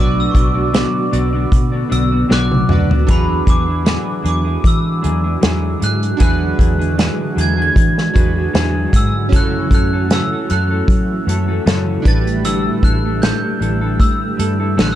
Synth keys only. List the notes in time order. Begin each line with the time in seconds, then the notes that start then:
Already playing: D4 F#4
0.00 B4 D5
2.70 D4 F#4 B4 D5
3.07 D4 F#4 G#4
3.11 B4
6.17 D4 F#4 G#4
6.21 B4
8.13 D4 F#4 G#4 B4
9.29 C#4 E4 F#4
9.34 A4
12.02 D4 E4 G4
12.07 B4